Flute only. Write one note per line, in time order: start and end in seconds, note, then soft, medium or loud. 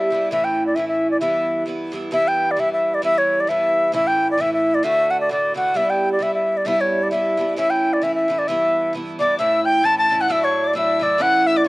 0.00 0.31 E5 medium
0.32 0.46 E5 medium
0.44 0.66 G5 medium
0.67 0.77 D5 medium
0.75 0.88 E5 medium
0.88 1.10 E5 medium
1.11 1.20 D5 medium
1.20 1.64 E5 medium
2.13 2.29 E5 medium
2.28 2.53 G5 medium
2.51 2.61 D5 medium
2.60 2.72 E5 medium
2.73 2.96 E5 medium
2.94 3.04 D5 medium
3.04 3.20 E5 loud
3.18 3.42 C#5 medium
3.40 3.50 D5 medium
3.49 3.94 E5 medium
3.95 4.09 E5 medium
4.07 4.30 G5 medium
4.31 4.42 D5 medium
4.41 4.53 E5 medium
4.53 4.76 E5 medium
4.75 4.85 D5 medium
4.84 5.12 E5 loud
5.11 5.20 F#5 medium
5.21 5.30 D5 medium
5.32 5.55 D5 medium
5.57 5.78 F#5 medium
5.76 5.91 E5 medium
5.90 6.12 G5 medium
6.12 6.24 D5 medium
6.23 6.34 E5 medium
6.34 6.59 E5 medium
6.57 6.68 D5 medium
6.67 6.82 E5 medium
6.81 7.05 C#5 medium
7.03 7.11 D5 medium
7.11 7.54 E5 medium
7.57 7.72 E5 medium
7.70 7.95 G5 medium
7.93 8.05 D5 medium
8.03 8.14 E5 medium
8.15 8.40 E5 medium
8.39 8.49 D5 medium
8.48 8.93 E5 medium
9.19 9.38 D5 medium
9.39 9.63 E5 medium
9.65 9.87 G5 medium
9.85 9.98 A5 medium
9.98 10.23 A5 medium
10.21 10.33 F#5 medium
10.32 10.46 E5 medium
10.44 10.69 C#5 medium
10.67 10.76 D5 medium
10.78 11.04 E5 loud
11.03 11.23 D5 medium
11.22 11.48 F#5 loud
11.47 11.59 E5 loud
11.57 11.68 D5 medium